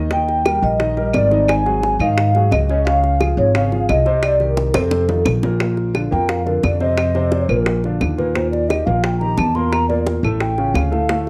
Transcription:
Already playing: D#2
0.11 D#3 D#4 D#5 G5, high bongo
0.29 high bongo
0.45 G3 G4 A#4, high bongo, claves
0.62 A#1 D#5
0.80 D#3 D#4 D#5, high bongo
0.97 G3 G4 A#4, high bongo
1.13 G#1 D5, high bongo, low bongo, claves
1.31 D#3 D#4 D#5, high bongo
1.48 G#5, high bongo, claves
1.66 F#3 F#4 G#4, high bongo
1.83 high bongo
1.99 G#2 D#3 D#4 D#5 F5, claves
2.18 high bongo
2.35 F#3 F#4 G#4, high bongo
2.51 C#2 D#5, high bongo, low bongo, claves
2.69 C#3 C#4 C#5, high bongo
2.85 C#3 C#4 C#5 F5, high bongo
3.04 high bongo
3.21 F3 F4 G#4, high bongo, claves
3.37 G#1 C#5
3.55 C#3 C#4 C#5 F5, high bongo
3.72 F3 F4 G#4, high bongo
3.89 C2 D#5, high bongo, low bongo, claves
4.06 C3 C4 C5, high bongo
4.23 D5, high bongo, claves
4.40 D#3 D#4 G4 A#4, high bongo
4.57 high bongo
4.74 F2 C3 C4 A4 C5, high bongo, claves
4.91 low bongo
5.08 D#3 D#4 F4, low bongo
5.25 A#1, low bongo, claves
5.43 A#2 A#3 A#4, low bongo
5.60 A#2 A#3 A#4, high bongo
5.77 high bongo
5.94 D3 D4 F4, high bongo, claves
6.11 F2 A#2 A#3 A#4 G5
6.29 F5, high bongo
6.46 D3 D4 F4 A#4, high bongo
6.63 F2 D5, high bongo, low bongo, claves
6.80 C3 C4 C5 D#5, high bongo
6.97 high bongo, claves
7.15 C3 C4 C5, high bongo
7.32 high bongo
7.49 A#1 A#2 A#3 A#4, claves
7.66 high bongo
7.84 D3 D4 F4, high bongo
8.01 D#2, high bongo, low bongo, claves
8.18 A#2 A#3 A#4 B4, high bongo
8.35 A#2 A#3 A#4 C5, high bongo
8.51 D5, high bongo
8.68 D#3 D#4 G4 D#5, high bongo, claves
8.86 A#1 A#2 A#3 A#4 F5
9.03 G5, high bongo
9.19 D#3 D#4 G4 A#5, high bongo
9.38 E2 A5, high bongo, low bongo, claves
9.55 A#2 A#3 A#4 C6, high bongo
9.72 A#5, high bongo, claves
9.89 A#2 A#3 A#4 D5, high bongo
10.07 high bongo
10.23 A1 A2 A3 A4, claves
10.40 G5, high bongo
10.58 C#3 C#4 F4, high bongo
10.74 D2 F5, high bongo, low bongo, claves
10.91 A2 A3 A4, high bongo
11.09 A2 A3 A4, high bongo

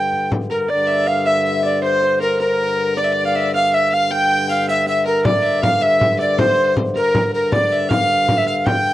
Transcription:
Already playing: G2 D3 A#4 D5 F5 G5
0.13 frame drum
0.32 frame drum
0.50 A#4
0.68 G2 D3 D5
0.87 E5
1.06 F5
1.25 E5
1.45 E5
1.63 D5
1.82 C5
2.03 C5
2.20 A#4
2.40 A#4
2.97 D5
3.04 E5
3.12 D5
3.25 F5
3.35 E5
3.54 F5
3.74 E5
3.92 F5
4.11 G5
4.49 F5
4.68 E5
4.86 E5
5.05 A#4
5.24 G2 D3 D5, frame drum
5.44 E5, frame drum
5.62 F5, frame drum
5.81 E5, frame drum
6.00 E5, frame drum
6.19 D5, frame drum
6.38 C5, frame drum
6.58 frame drum
6.77 frame drum
6.95 A#4, frame drum
7.15 frame drum
7.34 A#4, frame drum
7.52 D5, frame drum
7.72 E5, frame drum
7.89 F5, frame drum
8.29 frame drum
8.37 E5
8.46 F5, frame drum
8.65 G5, frame drum
8.85 frame drum

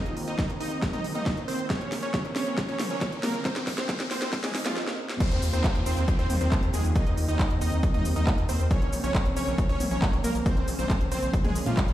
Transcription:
Already playing: D#3 A#3 C4 D#4 F4 G4 D#5, riser
0.06 D#2, closed hi-hat
0.16 D#2, open hi-hat
0.28 D#2 D#4 D#5, closed hi-hat
0.39 kick, snare, closed hi-hat
0.49 D#2, closed hi-hat
0.60 D#2 D#4 D#5, open hi-hat
0.71 D#2, closed hi-hat
0.82 kick, snare, closed hi-hat
0.93 D#2 D#4 D#5, closed hi-hat, mid tom
1.04 D#2, open hi-hat
1.15 D#2 D#4 D#5, closed hi-hat, mid tom
1.26 kick, snare, closed hi-hat
1.37 D#2, closed hi-hat
1.48 D#2 C4 C5, open hi-hat
1.59 D#2, closed hi-hat
1.70 C#3 C#4 C#5, kick, snare, closed hi-hat
1.81 A#1, closed hi-hat
1.92 A#1, snare, open hi-hat
2.03 A#1 C#4 C#5, closed hi-hat
2.14 kick, snare, closed hi-hat
2.25 A#1, closed hi-hat
2.36 A#1 C#4 C#5, snare, open hi-hat
2.47 A#1, closed hi-hat
2.57 kick, snare, closed hi-hat
2.68 A#1 C#4 C#5, closed hi-hat
2.79 A#1, snare, open hi-hat, mid tom
2.90 A#1 C#4 C#5
3.01 kick, snare, closed hi-hat
3.12 A#1, closed hi-hat
3.23 A#1 A#3 A#4, snare, open hi-hat, mid tom
3.34 A#1, closed hi-hat
3.45 C4 C5, kick, snare, closed hi-hat
3.56 A#1, snare, closed hi-hat
3.67 A#1, kick, snare, open hi-hat
3.78 A#1 C4 C5, snare, closed hi-hat
3.89 kick, snare, closed hi-hat
4.00 A#1, snare, closed hi-hat
4.11 A#1 C4 C5, snare, open hi-hat
4.22 A#1, snare, closed hi-hat
4.33 kick, snare, closed hi-hat, swell
4.44 A#1 G#3 G#4, snare, closed hi-hat, mid tom
4.55 A#1, snare, open hi-hat
4.66 A#1 F3 F4, snare, closed hi-hat, mid tom
4.77 snare
4.88 snare
5.09 snare
5.20 D#3 A#3 C4 F4 G4 C5, kick, closed hi-hat, crash, downlifter, shaker
5.31 D#2, closed hi-hat
5.42 D#2, open hi-hat, shaker
5.53 D#2 C4 C5, closed hi-hat, shaker
5.64 kick, clap, closed hi-hat, shaker
5.75 D#2, closed hi-hat
5.86 D#2 C4 C5, open hi-hat, shaker
5.97 D#2, closed hi-hat, shaker
6.08 kick, closed hi-hat, shaker
6.19 D#2 C4 C5, closed hi-hat
6.30 D#2, open hi-hat, mid tom, shaker
6.41 D#2 C4 C5, closed hi-hat, shaker
6.52 kick, clap, closed hi-hat, shaker
6.63 D#2, closed hi-hat
6.74 D#2 G#3 G#4, open hi-hat, mid tom, shaker
6.85 D#2, closed hi-hat, shaker
6.96 D#4 D#5, kick, closed hi-hat, shaker
7.07 D#2, closed hi-hat
7.17 D#2, open hi-hat, shaker
7.28 D#2 D#4 D#5, closed hi-hat, shaker
7.39 kick, clap, closed hi-hat, shaker
7.50 D#2, closed hi-hat
7.61 D#2 D#4 D#5, open hi-hat, shaker
7.72 D#2, closed hi-hat, shaker
7.83 kick, closed hi-hat, shaker
7.94 D#2 D#4 D#5, closed hi-hat, mid tom
8.05 D#2, open hi-hat, shaker
8.16 D#2 D#4 D#5, closed hi-hat, mid tom, shaker
8.27 kick, clap, closed hi-hat, shaker
8.38 D#2, closed hi-hat
8.49 D#2 C4 C5, open hi-hat, shaker
8.60 D#2, closed hi-hat, shaker
8.71 C#3 C4 C#4 C#5, kick, closed hi-hat, shaker
8.82 A#1, closed hi-hat
8.93 A#1, open hi-hat, shaker
9.04 A#1 C#4 C#5, closed hi-hat, shaker
9.15 kick, clap, closed hi-hat, shaker
9.25 A#1, closed hi-hat
9.36 A#1 C#4 C#5, open hi-hat, shaker
9.47 A#1, closed hi-hat, shaker
9.58 kick, closed hi-hat, shaker
9.69 A#1 C#4 C#5, closed hi-hat
9.80 A#1, open hi-hat, mid tom, shaker
9.91 A#1 C#4 C#5, shaker
10.02 kick, clap, closed hi-hat, shaker
10.13 A#1, closed hi-hat
10.24 A#1 A#3 A#4, open hi-hat, mid tom, shaker
10.35 A#1, closed hi-hat, shaker
10.46 C4 C#4 C5, kick, closed hi-hat, shaker
10.57 A#1, closed hi-hat
10.68 A#1, open hi-hat, shaker
10.79 A#1 C4 C5, closed hi-hat, mid tom, shaker
10.90 kick, clap, closed hi-hat, shaker
11.01 A#1, closed hi-hat
11.11 A#1 C4 C5, open hi-hat, shaker
11.22 A#1, closed hi-hat, shaker
11.33 kick, closed hi-hat, shaker
11.44 A#1 G#3 G#4, closed hi-hat, mid tom
11.55 A#1, open hi-hat, shaker
11.66 A#2 F3 F4, closed hi-hat, mid tom, shaker
11.77 kick, clap, closed hi-hat, shaker
11.88 A#1, closed hi-hat

